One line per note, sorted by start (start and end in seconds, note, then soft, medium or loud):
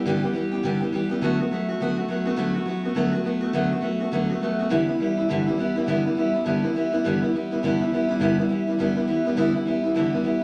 0.06 0.23 G2 medium
0.06 0.23 D3 medium
0.06 0.24 E3 medium
0.06 0.24 G3 medium
0.06 0.23 B3 loud
0.06 0.22 G4 loud
0.23 0.32 E3 soft
0.23 0.33 G3 soft
0.23 0.35 B3 medium
0.23 0.35 G4 medium
0.33 0.52 E3 medium
0.33 0.52 G3 medium
0.33 0.52 B3 medium
0.33 0.50 G4 medium
0.51 0.62 E3 medium
0.51 0.63 G3 medium
0.51 0.64 B3 medium
0.51 0.63 G4 medium
0.63 0.81 G2 medium
0.63 0.81 D3 medium
0.63 0.81 E3 medium
0.63 0.81 G3 medium
0.63 0.80 B3 medium
0.63 0.79 G4 loud
0.80 0.91 E3 soft
0.80 0.92 G3 medium
0.80 0.93 B3 medium
0.80 0.92 G4 medium
0.92 1.10 E3 medium
0.92 1.11 G3 medium
0.92 1.10 B3 medium
0.92 1.08 G4 medium
1.09 1.22 E3 medium
1.09 1.22 G3 medium
1.09 1.22 B3 medium
1.09 1.21 G4 medium
1.21 1.39 D3 medium
1.21 1.40 F#3 medium
1.21 1.40 A3 medium
1.21 1.40 B3 medium
1.21 1.38 F#4 medium
1.40 1.51 A3 soft
1.40 1.52 B3 medium
1.40 1.51 F#4 medium
1.51 1.69 F#3 medium
1.51 1.69 A3 medium
1.51 1.70 B3 medium
1.51 1.67 F#4 medium
1.69 1.80 A3 soft
1.69 1.80 B3 soft
1.69 1.80 F#4 medium
1.80 1.98 D3 medium
1.80 1.98 F#3 medium
1.80 1.99 A3 medium
1.80 1.97 B3 loud
1.80 1.95 F#4 medium
1.97 2.09 A3 soft
1.97 2.09 B3 medium
1.97 2.09 F#4 medium
2.08 2.26 F#3 medium
2.08 2.27 A3 medium
2.08 2.26 B3 medium
2.08 2.24 F#4 medium
2.25 2.36 A3 medium
2.25 2.37 B3 medium
2.25 2.38 F#4 medium
2.36 2.55 D3 medium
2.36 2.55 F#3 medium
2.36 2.56 A3 loud
2.36 2.55 B3 loud
2.36 2.53 F#4 loud
2.54 2.66 A3 soft
2.54 2.67 B3 medium
2.54 2.66 F#4 medium
2.66 2.84 F#3 medium
2.66 2.85 A3 medium
2.66 2.84 B3 medium
2.66 2.82 F#4 medium
2.83 2.95 A3 soft
2.83 2.95 B3 medium
2.83 2.96 F#4 medium
2.95 3.13 D3 medium
2.95 3.14 F#3 medium
2.95 3.14 A3 medium
2.95 3.13 B3 medium
2.95 3.10 F#4 medium
3.12 3.24 A3 medium
3.12 3.25 B3 medium
3.12 3.24 F#4 medium
3.24 3.42 F#3 medium
3.24 3.43 A3 medium
3.24 3.42 B3 medium
3.24 3.40 F#4 medium
3.41 3.53 A3 medium
3.41 3.53 B3 medium
3.41 3.54 F#4 medium
3.53 3.72 D3 medium
3.53 3.72 F#3 medium
3.53 3.72 A3 loud
3.53 3.71 B3 medium
3.53 3.70 F#4 loud
3.71 3.81 A3 soft
3.71 3.82 B3 medium
3.71 3.83 F#4 medium
3.81 4.00 F#3 medium
3.81 4.00 A3 medium
3.81 4.00 B3 medium
3.81 3.99 F#4 medium
4.00 4.12 A3 medium
4.00 4.12 B3 medium
4.00 4.12 F#4 medium
4.12 4.30 D3 medium
4.12 4.30 F#3 medium
4.12 4.31 A3 medium
4.12 4.30 B3 medium
4.12 4.28 F#4 medium
4.29 4.41 A3 soft
4.29 4.42 B3 medium
4.29 4.41 F#4 medium
4.41 4.59 F#3 medium
4.41 4.60 A3 medium
4.41 4.60 B3 medium
4.41 4.58 F#4 medium
4.59 4.70 A3 medium
4.59 4.70 B3 medium
4.59 4.71 F#4 medium
4.69 4.88 G2 medium
4.69 4.88 D3 medium
4.69 4.89 E3 loud
4.69 4.88 G3 medium
4.69 4.87 B3 medium
4.69 4.86 E4 loud
4.87 4.98 E3 soft
4.87 4.99 G3 soft
4.87 5.00 B3 soft
4.87 4.99 E4 medium
5.00 5.18 E3 medium
5.00 5.18 G3 medium
5.00 5.18 B3 medium
5.00 5.16 E4 medium
5.17 5.29 E3 soft
5.17 5.30 G3 soft
5.17 5.30 B3 soft
5.17 5.29 E4 medium
5.29 5.47 G2 medium
5.29 5.47 D3 medium
5.29 5.47 E3 loud
5.29 5.48 G3 medium
5.29 5.47 B3 medium
5.29 5.45 E4 loud
5.47 5.56 E3 soft
5.47 5.58 G3 medium
5.47 5.59 B3 medium
5.47 5.58 E4 medium
5.58 5.76 E3 medium
5.58 5.76 G3 medium
5.58 5.76 B3 medium
5.58 5.75 E4 medium
5.76 5.87 E3 medium
5.76 5.87 G3 medium
5.76 5.88 B3 medium
5.76 5.88 E4 medium
5.86 6.05 G2 medium
5.86 6.05 D3 medium
5.86 6.05 E3 medium
5.86 6.05 G3 medium
5.86 6.05 B3 loud
5.86 6.04 E4 loud
6.05 6.14 E3 soft
6.05 6.16 G3 medium
6.05 6.17 B3 medium
6.05 6.17 E4 medium
6.15 6.34 E3 medium
6.15 6.35 G3 medium
6.15 6.33 B3 medium
6.15 6.32 E4 medium
6.33 6.45 E3 medium
6.33 6.46 G3 soft
6.33 6.46 B3 soft
6.33 6.45 E4 medium
6.45 6.63 G2 medium
6.45 6.63 D3 medium
6.45 6.64 E3 medium
6.45 6.64 G3 medium
6.45 6.63 B3 medium
6.45 6.62 E4 medium
6.63 6.74 E3 soft
6.63 6.75 G3 medium
6.63 6.75 B3 medium
6.63 6.75 E4 medium
6.75 6.93 E3 medium
6.75 6.93 G3 medium
6.75 6.92 B3 medium
6.75 6.91 E4 medium
6.93 7.04 E3 medium
6.93 7.05 G3 medium
6.93 7.05 B3 medium
6.93 7.04 E4 medium
7.04 7.22 G2 medium
7.04 7.22 D3 medium
7.04 7.22 E3 medium
7.04 7.23 G3 medium
7.04 7.22 B3 medium
7.04 7.21 E4 medium
7.22 7.32 E3 soft
7.22 7.34 G3 soft
7.22 7.34 B3 medium
7.22 7.33 E4 medium
7.34 7.51 E3 medium
7.34 7.52 G3 medium
7.34 7.51 B3 medium
7.34 7.50 E4 medium
7.51 7.63 E3 soft
7.51 7.63 G3 medium
7.51 7.63 B3 medium
7.51 7.63 E4 medium
7.63 7.80 G2 medium
7.63 7.81 D3 medium
7.63 7.81 E3 medium
7.63 7.81 G3 medium
7.63 7.80 B3 loud
7.63 7.78 E4 medium
7.80 7.91 E3 medium
7.80 7.92 G3 medium
7.80 7.92 B3 medium
7.80 7.91 E4 medium
7.92 8.09 E3 medium
7.92 8.10 G3 medium
7.92 8.09 B3 medium
7.92 8.07 E4 medium
8.09 8.19 E3 soft
8.09 8.20 G3 medium
8.09 8.21 B3 medium
8.09 8.21 E4 medium
8.20 8.38 G2 loud
8.20 8.38 D3 medium
8.20 8.38 E3 medium
8.20 8.39 G3 medium
8.20 8.38 B3 medium
8.20 8.37 E4 loud
8.38 8.48 E3 soft
8.38 8.49 G3 medium
8.38 8.50 B3 medium
8.38 8.50 E4 medium
8.49 8.67 E3 medium
8.49 8.68 G3 medium
8.49 8.67 B3 medium
8.49 8.66 E4 medium
8.67 8.79 E3 soft
8.67 8.79 G3 medium
8.67 8.80 B3 soft
8.67 8.79 E4 medium
8.78 8.96 G2 medium
8.78 8.97 D3 medium
8.78 8.97 E3 medium
8.78 8.97 G3 medium
8.78 8.95 B3 medium
8.78 8.95 E4 medium
8.96 9.06 E3 soft
8.96 9.07 G3 medium
8.96 9.08 B3 medium
8.96 9.08 E4 medium
9.07 9.26 E3 medium
9.07 9.26 G3 medium
9.07 9.25 B3 medium
9.07 9.24 E4 medium
9.25 9.36 E3 medium
9.25 9.36 G3 medium
9.25 9.37 B3 medium
9.25 9.37 E4 medium
9.36 9.54 G2 medium
9.36 9.55 D3 medium
9.36 9.55 E3 loud
9.36 9.55 G3 medium
9.36 9.54 B3 loud
9.36 9.53 E4 medium
9.54 9.64 E3 soft
9.54 9.66 G3 soft
9.54 9.67 B3 soft
9.54 9.66 E4 medium
9.65 9.84 E3 medium
9.65 9.84 G3 medium
9.65 9.84 B3 medium
9.65 9.82 E4 medium
9.84 9.95 E3 soft
9.84 9.95 G3 medium
9.84 9.96 B3 medium
9.84 9.96 E4 medium
9.95 10.13 G2 medium
9.95 10.13 D3 medium
9.95 10.14 E3 medium
9.95 10.14 G3 medium
9.95 10.13 B3 medium
9.95 10.11 E4 medium
10.12 10.22 E3 soft
10.12 10.23 G3 medium
10.12 10.25 B3 medium
10.12 10.24 E4 medium
10.23 10.42 E3 medium
10.23 10.42 G3 medium
10.23 10.42 B3 medium
10.23 10.40 E4 medium